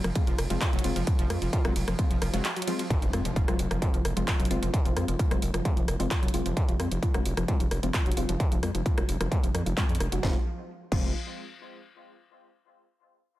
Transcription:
0.04 F1 F3, cross-stick, closed hi-hat
0.15 G#3 C4 F4, kick, closed hi-hat, ride
0.27 F1 F3, closed hi-hat
0.38 F1, cross-stick, open hi-hat, ride
0.50 F1 F3 G#3 C4 F4, closed hi-hat
0.61 F4, kick, clap, closed hi-hat, ride
0.73 F1 F#3, closed hi-hat
0.79 closed hi-hat
0.84 F1 G#3 C4 F4, open hi-hat, ride
0.96 F1 F3, closed hi-hat
1.07 kick, closed hi-hat, ride
1.19 F1 F3, closed hi-hat
1.30 F2 G#3 C4 F4, cross-stick, open hi-hat, ride
1.42 F1 F3, closed hi-hat
1.53 F4, kick, closed hi-hat, ride
1.65 F1 F#3 G#3 C4 F4, cross-stick, closed hi-hat
1.76 F1, open hi-hat, ride
1.88 F1 F3, cross-stick, closed hi-hat
1.99 G#3 C4 F4, kick, closed hi-hat, ride
2.11 F1 F3, closed hi-hat
2.22 F1 F3, cross-stick, open hi-hat, ride
2.33 F1 F#3 G#3 C4 F4, closed hi-hat
2.45 clap, closed hi-hat, ride
2.56 F#3, closed hi-hat
2.62 closed hi-hat
2.67 F3 G#3 C4 F4, open hi-hat, ride
2.79 F3, closed hi-hat
2.90 kick, closed hi-hat, impact
3.02 F1 F3, closed hi-hat
3.13 F2 G#3 C4 F4, cross-stick, open hi-hat
3.25 F1 F3, closed hi-hat
3.36 F4, kick, closed hi-hat
3.48 F1 F#3 G#3 C4 F4, cross-stick, closed hi-hat
3.59 F1, open hi-hat
3.71 F1 F3, cross-stick, closed hi-hat
3.82 G#3 C4 F4, kick, closed hi-hat
3.94 F1 F3, closed hi-hat
4.05 F1, cross-stick, open hi-hat
4.17 F1 F3 G#3 C4 F4, closed hi-hat
4.28 F4, kick, clap, closed hi-hat
4.40 F1 F#3, closed hi-hat
4.45 closed hi-hat
4.51 F1 G#3 C4 F4, open hi-hat
4.62 F1 F3, closed hi-hat
4.74 kick, closed hi-hat
4.85 F1 F3, closed hi-hat
4.97 F2 G#3 C4 F4, cross-stick, open hi-hat
5.08 F1 F3, closed hi-hat
5.19 F4, kick, closed hi-hat
5.31 F1 F#3 G#3 C4 F4, cross-stick, closed hi-hat
5.42 F1, open hi-hat
5.54 F1 F3, cross-stick, closed hi-hat
5.65 G#3 C4 F4, kick, closed hi-hat
5.77 F1 F3, closed hi-hat
5.88 F1, cross-stick, open hi-hat
6.00 F1 F3 G#3 C4 F4, open hi-hat
6.11 F4, kick, clap, closed hi-hat
6.23 F1 F#3, closed hi-hat
6.28 closed hi-hat
6.34 F1 G#3 C4 F4, open hi-hat
6.46 F1 F3, closed hi-hat
6.57 kick, closed hi-hat
6.68 F1 F3, closed hi-hat
6.80 F2 G#3 C4 F4, cross-stick, open hi-hat
6.91 F1 F3, closed hi-hat
7.03 F4, kick, closed hi-hat
7.14 F1 F#3 G#3 C4 F4, cross-stick, closed hi-hat
7.25 F1, open hi-hat
7.37 F1 F3, cross-stick, closed hi-hat
7.48 G#3 C4 F4, kick, closed hi-hat
7.60 F1 F3, closed hi-hat
7.71 F1, cross-stick, open hi-hat
7.83 F1 F3 G#3 C4 F4, closed hi-hat
7.94 F4, kick, clap, closed hi-hat
8.06 F1 F#3, closed hi-hat
8.12 closed hi-hat
8.17 F1 G#3 C4 F4, open hi-hat
8.29 F1 F3, closed hi-hat
8.40 kick, closed hi-hat
8.52 F1 F3, closed hi-hat
8.63 F2 G#3 C4 F4, cross-stick, open hi-hat
8.75 F1 F3, closed hi-hat
8.86 F4, kick, closed hi-hat
8.97 F1 F#3 G#3 C4 F4, cross-stick, closed hi-hat
9.09 F1, open hi-hat
9.20 F1 F3, cross-stick, closed hi-hat
9.32 G#3 C4 F4, kick, closed hi-hat
9.43 F1 F3, closed hi-hat
9.54 F2 F3, cross-stick, open hi-hat
9.66 F1 F3, open hi-hat
9.77 G#3 C4 F4, kick, clap, closed hi-hat
9.89 F2 F3, closed hi-hat
9.95 closed hi-hat
10.00 F1, cross-stick, open hi-hat
10.12 F1 F#3, closed hi-hat
10.23 F1 F3 G#3 C4 F4, kick, snare
10.92 F1 F3 G#3 C4 F4, kick, crash

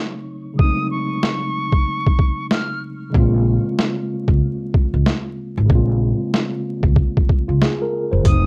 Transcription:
Already playing: C#3 F#3 A3 C4 D#4
0.54 C#3 F#3
0.59 G#3 C4 D#6, kick
0.63 A3 D#4
0.91 C#6
1.23 snare
1.72 kick
2.07 kick
2.19 kick
2.51 F6, snare
3.10 C#3 G#3
3.15 A#1 A#3 C4, kick
3.20 F4
3.79 snare
4.28 C#2, kick
4.74 kick
4.94 C#2
5.06 snare
5.58 G#1
5.66 C#3 G#3, kick
5.70 A#1 A#3 C4
5.75 F4
6.34 snare
6.83 C#2, kick
6.96 kick
7.17 kick
7.29 kick
7.48 C#2 F4
7.62 G#4, snare
7.82 A#4
8.12 F#1 C5
8.21 C#3 F#3
8.25 F1 A3 C4 D#6, kick, closed hi-hat
8.30 D#4

